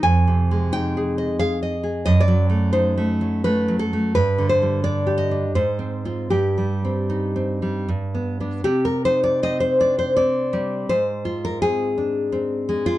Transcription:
\new Staff \with { instrumentName = "Nylon-string guitar" } { \time 3/4 \key c \minor \tempo 4 = 84 << { aes''4 g''4 f''4 | dis''16 d''8. c''8 r8 b'8 a'8 | b'8 c''8 d''8 ees''8 c''4 | g'2~ g'8 r8 |
g'16 bes'16 c''16 d''16 ees''16 c''16 d''16 c''16 d''4 | c''8. bes'16 aes'4.~ aes'16 f'16 | } \\ { \tuplet 3/2 { f,8 c8 aes8 ees'8 aes'8 ees''8 aes'8 ees''8 aes'8 } | \tuplet 3/2 { fis,8 fis8 a8 dis'8 a8 fis8 a8 fis8 a8 } | \tuplet 3/2 { g,8 d8 g8 d'8 g'8 d'8 aes,8 c'8 <c' f'>8 } | \tuplet 3/2 { g,8 g8 c'8 ees'8 c'8 g8 g,8 b8 <b d'>8 } |
c8 ees'8 c'8 d'8 c'8 g8 | aes,8 f'8 c'8 d'8 c'8 aes8 | } >> }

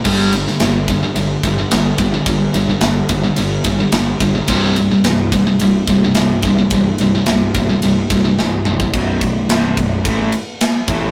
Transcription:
<<
  \new Staff \with { instrumentName = "Distorted electric guitar" } { \clef bass \time 4/4 \key b \phrygian \tempo 4 = 108 <g, d g>8 <g, d>16 <g, d>16 <g, d>8 <g, d>16 <g, d>16 <g, d>8 <g, d>16 <g, d>16 <g, d>8 <g, d>16 <g, d>16 | <g, d>8 <g, d>16 <g, d>16 <g, d>8 <g, d>16 <g, d>16 <g, d>8 <g, d>16 <g, d>16 <g, d>8 <g, d>16 <g, d>16 | <c, g, c>8 <c, g,>16 <c, g,>16 <c, g,>8 <c, g,>16 <c, g,>16 <c, g,>8 <c, g,>16 <c, g,>16 <c, g,>8 <c, g,>16 <c, g,>16 | <c, g,>8 <c, g,>16 <c, g,>16 <c, g,>8 <c, g,>16 <c, g,>16 <c, g,>8 <c, g,>16 <c, g,>16 <c, g,>8 <c, g,>16 <c, g,>16 |
<b,, fis, b,>8 <b,, fis,>8 <c, g, c>8 <b,, fis,>8 <a, e a>8 r4 <a, e a>8 | }
  \new Staff \with { instrumentName = "Distorted electric guitar" } { \clef bass \time 4/4 \key b \phrygian <g, d g>8 <g, d>16 <g, d>16 <g, d>8 <g, d>16 <g, d>16 <g, d>8 <g, d>16 <g, d>16 <g, d>8 <g, d>16 <g, d>16 | <g, d>8 <g, d>16 <g, d>16 <g, d>8 <g, d>16 <g, d>16 <g, d>8 <g, d>16 <g, d>16 <g, d>8 <g, d>16 <g, d>16 | <c, g, c>8 <c, g,>16 <c, g,>16 <c, g,>8 <c, g,>16 <c, g,>16 <c, g,>8 <c, g,>16 <c, g,>16 <c, g,>8 <c, g,>16 <c, g,>16 | <c, g,>8 <c, g,>16 <c, g,>16 <c, g,>8 <c, g,>16 <c, g,>16 <c, g,>8 <c, g,>16 <c, g,>16 <c, g,>8 <c, g,>16 <c, g,>16 |
r1 | }
  \new Staff \with { instrumentName = "Picked electric bass" } { \clef bass \time 4/4 \key b \phrygian g,,4 g,,4 g,,8 g,,8 g,,8 g,,8 | g,,8 g,,8 g,,8 g,,8 g,,8 g,,8 g,,8 g,,8 | c,,4 c,,4 c,,8 c,,8 c,,8 c,,8 | c,,8 c,,8 c,,8 c,,8 c,,8 c,,8 c,,8 c,,8 |
b,,,8 b,,,8 c,,8 b,,,8 a,,8 r4 a,,8 | }
  \new DrumStaff \with { instrumentName = "Drums" } \drummode { \time 4/4 <cymc bd>8 cymr16 sn16 <cymr sn>8 <bd cymr>8 cymr8 <bd cymr>8 <cymr sn>8 <bd cymr>8 | <bd cymr>8 cymr8 <cymr sn>8 <bd cymr>8 cymr8 <bd cymr>8 <cymr sn>8 <bd cymr>8 | <bd cymr>8 cymr8 <cymr sn>8 <bd cymr>8 cymr8 <bd cymr>8 <cymr sn>8 <bd cymr>8 | <bd cymr>8 cymr8 <cymr sn>8 <bd cymr>8 cymr8 <bd cymr>8 sn8 toml16 bd16 |
<bd cymr>8 <bd cymr>8 <cymr sn>8 <bd cymr>8 <bd cymr>8 cymr8 <cymr sn>8 <bd cymr>8 | }
>>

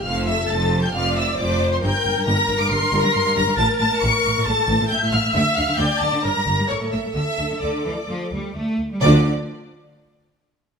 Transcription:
<<
  \new Staff \with { instrumentName = "Violin section" } { \time 4/4 \key d \minor \tempo 4 = 135 f'''8 e'''8 a'''8. g'''16 f'''8 e'''8 d'''8. c'''16 | g'''4 bes'''8. d''''16 c''''8. bes'''16 c''''8 bes'''8 | a'''8 a'''8 cis''''4 a'''4 g'''8 f'''8 | e'''8 f'''8 g'''8 a'''8 bes'''4 cis'''8 e'''8 |
e'''4 d'''2 r4 | d'''8 r2. r8 | }
  \new Staff \with { instrumentName = "Violin section" } { \time 4/4 \key d \minor f''8 e''8 a''8. g''16 f''8 e''8 d''8. c''16 | g''4 bes''8. d'''16 c'''8. bes''16 c'''8 bes''8 | a''8 a''8 cis'''4 a''4 g''8 f''8 | e''8 f''8 g''8 a''8 bes''4 cis''8 e''8 |
e''4 d''2 r4 | d''8 r2. r8 | }
  \new Staff \with { instrumentName = "Viola section" } { \time 4/4 \key d \minor a'2 d''4 c''4 | bes'1~ | bes'2 a'4 e''4~ | e''4 d''4 bes'4 a'4 |
a'2.~ a'8 r8 | <f d'>8 r2. r8 | }
  \new Staff \with { instrumentName = "Cello section" } { \clef bass \time 4/4 \key d \minor f,4 f,4 f,4 f,4 | g,16 r16 g,16 g,16 g,16 r16 g,16 g,16 g,16 g,16 g,16 g,16 g,16 g,16 g,16 g,16 | a,16 r16 a,16 a,16 a,16 r16 a,16 a,16 a,16 a,16 a,16 a,16 a,16 a,16 a,16 a,16 | d16 r16 d16 d16 d16 r16 d16 d16 g,16 g,16 g,16 g,16 a,16 a,16 a,16 a,16 |
d16 r16 d16 d16 d8 e8 f8 g8 a8. g16 | d8 r2. r8 | }
  \new Staff \with { instrumentName = "Double bass section" } { \clef bass \time 4/4 \key d \minor f,,4 f,,4 f,,4 f,,4 | g,,16 r16 g,,16 r16 g,,16 r16 g,,16 r16 g,,16 r16 g,,16 r16 g,,16 r16 g,,16 r16 | a,,16 r16 a,,16 r16 a,,16 r16 a,,16 r16 a,,16 r16 a,,16 r16 a,,16 r16 a,,16 r16 | d,16 r16 d,16 r16 d,16 r16 d,16 r16 g,,16 r16 g,,16 r16 a,,16 r16 a,,16 r16 |
d,16 r16 d,16 r16 d,16 r16 d,16 r16 d,16 r16 d,16 r16 d,16 r16 d,16 r16 | d,8 r2. r8 | }
>>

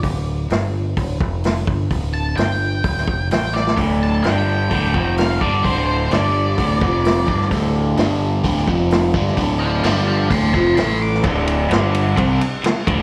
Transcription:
<<
  \new Staff \with { instrumentName = "Lead electric guitar" } { \time 4/4 \key d \minor \tempo 4 = 129 r1 | r8 a''8 g''2 g''8 d''8 | r8 a''8 g''2 f''8 d''8 | c''8 c''8 d''2. |
r1 | r8 <f'' a''>8 <f'' a''>8 <f'' a''>8 <a'' c'''>8 <a'' c'''>8 <a'' c'''>8 d'''8 | r1 | }
  \new Staff \with { instrumentName = "Overdriven electric guitar" } { \clef bass \time 4/4 \key d \minor r1 | r1 | <d, a, d>4 <g, d g>4 <d, a, d>8 <f, c f>4 <g, d g>8 | <d, a, d>4 <g, d g>4 <d, a, d>8 <f, c f>4 <g, d g>8 |
<d, a, d>4 <g, d g>4 <d, a, d>8 <f, c f>4 <g, d g>8 | <d, a, d>4 <g, d g>4 <d, a, d>8 <f, c f>8 <a, e a>4 | <d, a, d>4 <g, d g>4 <c g c'>8 r4 <d, a, d>8 | }
  \new Staff \with { instrumentName = "Picked electric bass" } { \clef bass \time 4/4 \key d \minor d,,4 g,,4 d,,8 f,,4 g,,8 | d,,4 g,,4 d,,8 f,,8 a,,4 | d,,4 g,,4 d,,8 f,,4 g,,8 | d,,4 g,,4 d,,8 f,,4 g,,8 |
d,,4 g,,4 d,,8 f,,4 g,,8 | d,,4 g,,4 d,,8 f,,8 a,,4 | d,,4 g,,4 c,8 r4 d,,8 | }
  \new DrumStaff \with { instrumentName = "Drums" } \drummode { \time 4/4 <hho bd>4 <hho sn>4 <hho bd>8 bd8 <hho sn>8 bd8 | <hho bd>4 <hho sn>4 <hho bd>16 sn16 bd8 <hho sn>8 sn16 sn16 | <hho bd>4 <hho sn>4 <hho bd>8 bd8 <hho sn>8 bd8 | <hho bd>4 <hho sn>4 <hho bd>8 bd8 <hho sn>8 bd16 sn16 |
<hho bd>4 <hho sn>4 <hho bd>16 sn16 bd8 <hho sn>8 bd16 sn16 | <hho bd>4 <hho sn>4 <hho bd>8 bd8 <hho sn>8. sn16 | <bd cymr>8 cymr8 <cymr sn>8 cymr8 <bd cymr>8 cymr8 <cymr sn>8 <bd cymr>8 | }
>>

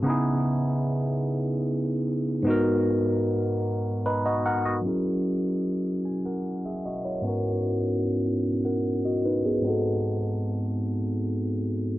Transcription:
\new Staff \with { instrumentName = "Tine electric piano" } { \time 6/8 \key gis \minor \tempo 4. = 50 << { r2. | r2 <dis' b'>16 <fis' dis''>16 <ais' fis''>16 <fis' dis''>16~ | <fis' dis''>16 r4 r16 gis''16 <ais' fis''>8 <gis' e''>16 <fis' dis''>16 <e' cis''>16~ | <e' cis''>16 r4. <ais' fis''>8 <fis' dis''>16 <dis' b'>16 <b gis'>16~ |
<b gis'>16 r2 r8. | } \\ { <cis b dis' e' gis'>2. | <gis, b dis' fis' ais'>2. | <fis cis' e' gis' ais'>2. | <gis, b cis' dis' fis' ais'>2. |
<gis, bis dis' fis' a'>2. | } >> }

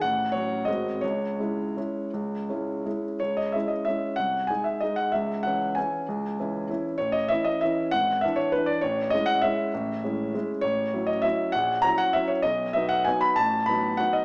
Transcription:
\new Staff \with { instrumentName = "Grand piano" } { \time 3/4 \key cis \minor \tempo 4 = 194 << { fis''4 cis''4 dis''4 | cis''2.~ | cis''2~ cis''8 r8 | cis''8 dis''8 e''8 dis''8 e''4 |
fis''4 gis''8 e''8 dis''8 fis''8 | e''4 fis''4 gis''4~ | gis''2~ gis''8 r8 | cis''8 dis''8 e''8 dis''8 e''4 |
fis''4 e''8 cis''8 b'8 d''8 | cis''4 dis''8 fis''8 e''4~ | e''2~ e''8 r8 | \key fis \dorian cis''4. dis''8 e''4 |
fis''4 ais''8 fis''8 e''8 cis''8 | dis''4 e''8 fis''8 gis''8 b''8 | a''4 b''4 fis''8 dis''8 | } \\ { a,,4 <fis cis' fis'>4 <gis,, gis bis fis'>4 | cis,4 <gis cis' e'>4 <gis cis' e'>4 | cis,4 <gis cis' e'>4 <gis cis' e'>4 | cis,4 <gis cis' e'>4 <gis cis' e'>4 |
bis,,4 <gis dis'>4 <gis dis'>4 | cis,4 <e cis' e'>4 <e cis' e'>4 | cis,4 <e cis' e'>4 <e cis' e'>4 | a,,4 <e cis' e'>4 <e cis' e'>4 |
gis,,4 <e d' e'>4 <e d' e'>4 | a,,4 <gis cis' e'>4 <gis cis' e'>4 | a,,4 <gis cis' e'>4 <gis cis' e'>4 | a,,4 <fis cis' e'>4 <fis cis' e'>4 |
ais,,4 <fis cis' e'>4 <fis cis' e'>4 | b,,4 <fis b dis'>4 <fis b dis'>4 | a,,4 <fis b dis'>4 <fis b dis'>4 | } >> }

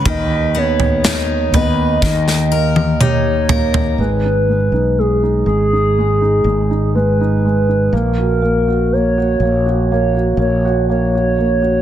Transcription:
<<
  \new Staff \with { instrumentName = "Soft synth lead" } { \time 4/4 \key gis \minor \tempo 4 = 61 dis''8 cis''4 dis''4. cis''4 | b'4 gis'8 gis'4. b'4 | ais'4 cis''4 cis''8 cis''8 cis''4 | }
  \new Staff \with { instrumentName = "Steel-string acoustic guitar" } { \time 4/4 \key gis \minor <dis b'>8 b8 dis'8 b'8 dis8 ais'8 dis'8 ais'8 | r1 | r1 | }
  \new Staff \with { instrumentName = "Grand piano" } { \time 4/4 \key gis \minor dis8 b8 dis8 b8 dis8 ais8 g'8 ais8 | gis16 dis'16 gis16 dis'16 gis16 dis'16 gis16 dis'16 gis16 dis'16 gis16 dis'16 gis16 dis'16 gis16 dis'16 | ais16 fis'16 ais16 fis'16 ais16 fis'16 ais16 fis'16 ais16 fis'16 ais16 fis'16 ais16 fis'16 ais16 fis'16 | }
  \new Staff \with { instrumentName = "Fretless electric bass" } { \clef bass \time 4/4 \key gis \minor dis,4. dis,8 dis,2 | gis,,8. b,,8. gis,,4 gis,,4. | ais,,4. ais,,4 ais,,4. | }
  \new DrumStaff \with { instrumentName = "Drums" } \drummode { \time 4/4 <bd tomfh>8. tomfh16 sn8 tomfh8 <bd sn>16 sn8 tommh16 toml8 tomfh16 tomfh16 | r4 r4 r4 r4 | r4 r4 r4 r4 | }
>>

